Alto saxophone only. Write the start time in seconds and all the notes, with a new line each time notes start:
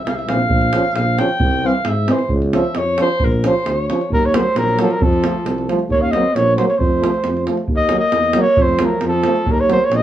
0.04 E5
0.08 F5
0.15 E5
0.28 F5
0.96 F5
1.19 G5
1.66 F5
1.87 E5
2.12 C5
2.53 E5
2.78 C#5
3.02 C5
3.24 A#4
3.47 C5
3.69 C#5
4.13 F#3
4.23 A#3
4.35 A3
4.57 F#3
4.82 F3
4.95 F#3
5.06 F3
5.92 A#3
6.02 C#4
6.12 C4
6.33 A#3
6.55 A3
6.67 A#3
6.79 A3
7.72 A#3
7.91 A#3
8.36 A#3
8.58 A3
8.78 F#3
9.02 F3
9.45 F#3
9.53 A#3
9.67 A3
9.81 A#3
9.91 A#3